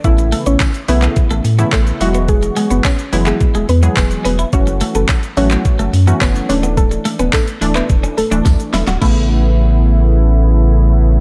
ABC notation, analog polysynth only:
X:1
M:4/4
L:1/16
Q:1/4=107
K:A
V:1 name="Analog polysynth"
[C,E,A,B,E]4- [C,E,A,B,E] z [C,E,A,B,E]4 z [C,E,A,B,E]3 [E,F,G,B,F]2- | [E,F,G,B,F]4 z2 [E,F,G,B,E]4 z [E,F,G,B,G]4 z | [E,F,A,CF]4- [E,F,A,CF] z [E,F,A,CF]4 z [E,F,A,CF]3 [E,A,D]2- | [E,A,D]4 z2 [E,A,D]4 z [E,A,D]4 z |
[C,A,B,E]16 |]